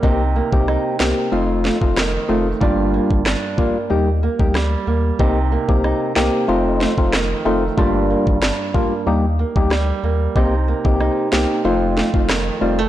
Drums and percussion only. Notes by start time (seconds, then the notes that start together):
0.03 kick
0.53 kick
0.68 cross-stick
1.00 snare
1.65 snare
1.82 kick
1.97 cross-stick, snare
2.61 kick
3.11 kick
3.26 cross-stick, snare
3.58 kick
4.40 kick
4.55 cross-stick, snare
5.19 kick
5.69 kick
5.84 cross-stick
6.16 snare
6.81 snare
6.98 kick
7.13 cross-stick, snare
7.78 kick
8.27 kick
8.42 cross-stick, snare
8.75 kick
9.56 kick
9.71 cross-stick, snare
10.36 kick
10.85 kick
11.01 cross-stick
11.33 snare
11.97 snare
12.14 kick
12.29 cross-stick, snare